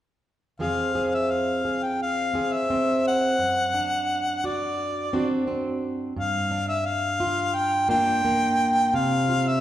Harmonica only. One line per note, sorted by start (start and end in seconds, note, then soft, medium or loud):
0.60 1.16 F5 medium
1.14 1.32 E5 medium
1.31 1.85 F5 medium
1.83 2.00 G5 medium
2.02 2.55 F5 medium
2.54 3.05 E5 medium
3.07 4.47 F#5 medium
4.45 5.48 D5 medium
6.20 6.66 F5 medium
6.68 6.87 E5 medium
6.85 7.56 F5 medium
7.55 7.89 G5 medium
7.90 8.96 G5 medium
8.95 9.49 F5 medium
9.48 9.61 E5 medium